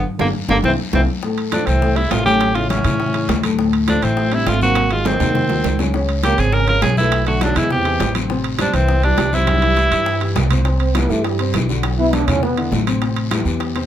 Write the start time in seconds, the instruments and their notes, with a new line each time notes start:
0.19 upright bass G1, trombone D3, upright piano G3 A#3 D4, tenor saxophone A#3, high bongo, high conga, high timbale, long guiro
0.49 upright bass G1, trombone D3, upright piano G3 A#3 D4, tenor saxophone A#3, high bongo, high conga, high timbale, long guiro
0.63 upright bass C2, trombone E3, upright piano A#3 C4 E4, tenor saxophone C4, high bongo, high conga, high timbale, long guiro
0.93 upright bass C2, trombone E3, upright piano A#3 C4 E4, tenor saxophone C4, high bongo, high conga, high timbale, long guiro
1.23 upright piano A2 A3 A4, high bongo, high conga, long guiro
1.37 high conga, high timbale
1.52 upright piano A2 A3 A4, trombone F3, tenor saxophone D4, high bongo, high conga, high timbale, low timbale, short guiro
1.67 upright bass C2, trombone E3, tenor saxophone C4, high bongo, high conga, high timbale, short guiro
1.82 upright piano A2 A3 A4, high bongo, long guiro
1.95 upright piano C3 C4 E4, trombone G3, tenor saxophone E4, high bongo, high conga, high timbale
2.10 upright bass A1, trombone A3, tenor saxophone F4, high bongo, low bongo, high conga, high timbale, low timbale, short guiro
2.24 upright piano A2 A3 A4, trombone C#4, tenor saxophone G4, high bongo, high conga, short guiro
2.41 high bongo, high conga, high timbale, long guiro
2.54 upright piano C#3 C#4 E4, trombone A3, tenor saxophone F4, high bongo, high timbale
2.68 trombone E3, tenor saxophone C#4, high bongo, high conga, high timbale, low timbale, short guiro
2.84 upright bass A2, upright piano C#3 C#4 E4, high conga, low conga, high timbale, short guiro
3.00 high bongo, high conga, long guiro
3.14 upright piano C#3 C#4 E4, high bongo, high conga, high timbale
3.28 upright bass D2, high bongo, low bongo, high conga, high timbale, low timbale, short guiro
3.44 upright piano A2 A3 A4, high bongo, high conga, high timbale, short guiro
3.59 upright piano A2 A3 A4, high bongo, high conga, long guiro
3.73 high conga, high timbale
3.87 upright piano A2 A3 A4, trombone F3, tenor saxophone D4, high bongo, high conga, high timbale, low timbale, short guiro
4.02 upright bass A1, trombone E3, tenor saxophone C4, high bongo, high conga, high timbale, short guiro
4.17 upright piano A2 A3 A4, high bongo, high conga, long guiro
4.32 upright piano C3 C4 D4, trombone G3, tenor saxophone E4, high bongo, high conga, high timbale
4.46 upright bass G#1, trombone A3, tenor saxophone F4, high bongo, low bongo, high conga, high timbale, low timbale, short guiro
4.61 upright piano C3 C4 C5, trombone A#3, tenor saxophone F#4, high bongo, high conga, short guiro
4.75 high bongo, high conga, high timbale, long guiro
4.91 upright piano D#3 D#4 F#4, trombone G#3, tenor saxophone F4, high bongo, high timbale
5.05 trombone D#3, tenor saxophone C4, high bongo, high conga, high timbale, short guiro
5.20 upright bass D#2, upright piano D#3 D#4 F#4, high bongo, high conga, low conga, high timbale, short guiro
5.35 high bongo, high conga, low conga, high timbale, long guiro
5.49 upright piano D#3 D#4 F#4, high bongo, high conga, low timbale
5.64 upright bass C#2, low bongo, high conga, low timbale, short guiro
5.79 upright piano C#3 C#4 C#5, low bongo, high conga, low timbale, short guiro
5.94 upright piano C#3 C#4 C#5, high bongo, high conga, long guiro
6.09 high conga, high timbale
6.23 upright piano C#3 C#4 C#5, trombone A#3, tenor saxophone G4, high bongo, high conga, high timbale, low timbale, short guiro
6.38 upright bass G#1, trombone C4, tenor saxophone G#4, high bongo, high conga, high timbale, short guiro
6.53 upright piano C#3 C#4 C#5, trombone C#4, tenor saxophone A#4, high bongo, high conga, long guiro
6.67 upright piano F3 F4 G#4, trombone C#4, tenor saxophone A#4, high bongo, high conga, high timbale
6.82 upright bass B1, trombone C#4, tenor saxophone G#4, high bongo, low bongo, high conga, high timbale, low timbale, short guiro
6.97 upright piano B2 B3 B4, trombone A3, tenor saxophone E4, high bongo, high conga, short guiro
7.12 high bongo, high conga, high timbale, long guiro
7.26 upright piano D3 D4 F#4, trombone A3, tenor saxophone F#4, high bongo, high conga, high timbale
7.41 trombone F#3, tenor saxophone D4, high bongo, high conga, high timbale, low timbale, short guiro
7.55 upright bass E2, upright piano E3 E4 G#4, trombone G#3, tenor saxophone E4, high conga, low conga, high timbale, short guiro
7.71 trombone C4, tenor saxophone G4, high bongo, high conga, low conga, long guiro
7.85 upright piano E3 E4 G#4, high bongo, high conga, high timbale
8.00 upright bass A1, high bongo, low bongo, high conga, high timbale, low timbale, short guiro
8.15 upright piano C3 C4 C5, high bongo, high conga, high timbale, short guiro
8.30 upright piano C3 C4 C5, high bongo, high conga, long guiro
8.44 high conga, high timbale
8.59 upright piano C3 C4 C5, trombone G3, tenor saxophone D4, high bongo, high conga, high timbale, low timbale, short guiro
8.74 upright bass C2, trombone E3, tenor saxophone C4, high bongo, high conga, high timbale, short guiro
8.89 upright piano C3 C4 C5, high bongo, high conga, long guiro
9.03 upright piano E3 E4 G4, trombone G3, tenor saxophone D4, high bongo, high conga, high timbale
9.18 upright bass C2, high bongo, low bongo, high timbale, low timbale, short guiro
9.33 upright piano C3 C4 C5, trombone G3, tenor saxophone E4, high bongo, high conga, short guiro
9.47 high bongo, high conga, high timbale, long guiro
9.62 upright piano E3 E4 G4, high bongo, high timbale
9.77 high bongo, high timbale, low timbale, short guiro
9.91 upright bass G2, upright piano E3 E4 G4, high timbale, short guiro
10.06 high bongo, long guiro
10.21 upright piano E3 E4 G4, high bongo, high timbale
10.36 upright bass C2, high bongo, low bongo, low conga, high timbale, low timbale, short guiro
10.50 upright piano C3 C4 C5, high bongo, low conga, high timbale, short guiro
10.65 upright piano C3 C4 C5, high bongo, high conga, high timbale, long guiro
10.80 trombone C4, high conga, high timbale
10.95 upright piano E3 E4 G4, trombone B3, high bongo, high conga, high timbale, short guiro
11.09 upright bass G2, upright piano E3 E4 G4, trombone A3, high bongo, short guiro
11.24 trombone G3, high bongo, high conga, high timbale, long guiro
11.39 upright piano C3 C4 C5, high bongo, high timbale
11.54 upright bass B1, upright piano E3 E4 G4, high bongo, low bongo, high conga, high timbale, low timbale, short guiro
11.69 upright piano D3 D4 F#4, high bongo, high conga, short guiro
11.83 high bongo, high conga, high timbale, long guiro
11.98 upright piano B2 B3 B4, trombone E4, high conga
12.13 trombone D4, high bongo, high conga, high timbale, short guiro
12.27 upright bass E2, upright piano D3 D4 E4, trombone C#4, high bongo, high conga, low conga, high timbale, short guiro
12.42 upright piano B2 B3 B4, trombone B3, high bongo, high conga, long guiro
12.57 upright piano D3 D4 E4, high bongo, high conga, high timbale
12.71 upright bass A1, high bongo, low bongo, high conga, low timbale, short guiro
12.87 upright piano C3 C4 C5, high bongo, high conga, high timbale, short guiro
13.02 upright piano C3 C4 C5, high bongo, high conga, high timbale, long guiro
13.16 high conga, high timbale
13.31 upright piano E3 E4 G4, high bongo, high conga, high timbale, short guiro
13.45 upright bass E2, upright piano E3 E4 G4, high bongo, short guiro
13.60 high bongo, high conga, high timbale, long guiro
13.75 upright piano C3 C4 C5, high bongo, high conga, high timbale